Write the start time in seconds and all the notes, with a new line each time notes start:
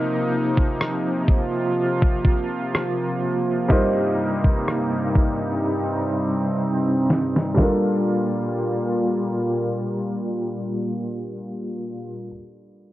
Already playing: C3 F3 A#3 C4 D#4 G4 A#4
0.57 kick
0.81 cross-stick
1.27 F4, kick
2.02 kick
2.25 kick
2.75 cross-stick
3.68 G2 C3 G3 A#3 D#4 F4 A#4 C5, kick
4.44 kick
4.68 cross-stick
5.15 kick
5.64 C4
7.10 snare
7.36 snare
7.54 A#2 G3 A#3 D4 F4, kick, snare
7.60 A4 A#4